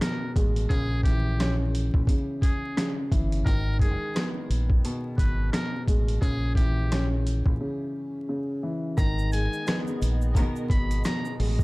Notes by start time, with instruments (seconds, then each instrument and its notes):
Already playing: upright piano G#3 B3
0.00 upright piano B2, muted trumpet A#4, cross-stick, snare, closed hi-hat
0.36 fingered electric bass A1, upright piano G#3, kick, closed hi-hat
0.56 closed hi-hat
0.69 fingered electric bass A#1, upright piano C#3, muted trumpet G#4, kick, closed hi-hat
1.03 upright piano E3, muted trumpet G4, kick, closed hi-hat
1.40 upright piano C#4, cross-stick, snare, closed hi-hat
1.75 closed hi-hat
1.94 fingered electric bass A#1, kick
2.07 upright piano C#3, kick, closed hi-hat
2.42 muted trumpet G#4, kick, closed hi-hat
2.77 upright piano C#3, cross-stick, snare, closed hi-hat
3.11 fingered electric bass G1, upright piano E3, kick, closed hi-hat
3.32 closed hi-hat
3.45 fingered electric bass G#1, upright piano D#3, muted trumpet A#4, kick, closed hi-hat
3.79 upright piano G#3, muted trumpet G#4, kick, closed hi-hat
4.15 upright piano B3, cross-stick, snare, closed hi-hat
4.50 fingered electric bass A#1, closed hi-hat
4.70 kick
4.85 upright piano B2, closed hi-hat
5.18 fingered electric bass G#1, muted trumpet B4, kick, closed hi-hat
5.52 upright piano B2, muted trumpet A#4, cross-stick, snare, closed hi-hat
5.88 fingered electric bass A1, upright piano G#3, kick, closed hi-hat
6.08 closed hi-hat
6.22 fingered electric bass A#1, upright piano C#3, muted trumpet G#4, kick, closed hi-hat
6.55 upright piano E3, muted trumpet G4, kick, closed hi-hat
6.92 upright piano C#4, cross-stick, snare, closed hi-hat
7.27 closed hi-hat
7.46 fingered electric bass A#1, kick
7.60 upright piano C#3
8.29 upright piano C#3
8.63 upright piano E3
8.97 fingered electric bass G#1, upright piano D#3, analog synth pad B3 G#4 D#5, muted trumpet A#5, kick, closed hi-hat, shaker
9.18 shaker
9.32 upright piano G#3, muted trumpet G#5, closed hi-hat, shaker
9.53 shaker
9.67 upright piano B3, cross-stick, snare, closed hi-hat, shaker
9.87 shaker
10.02 fingered electric bass A#1, closed hi-hat, shaker
10.22 shaker
10.35 upright piano B2, string section D#3 B3 A#4, kick, closed hi-hat, shaker
10.56 shaker
10.70 fingered electric bass G#1, muted trumpet B5, kick, closed hi-hat
10.91 closed hi-hat, shaker
11.04 upright piano B2, muted trumpet A#5, cross-stick, snare, closed hi-hat, shaker
11.25 shaker
11.40 fingered electric bass A1, upright piano G#3, open hi-hat
11.59 kick, shaker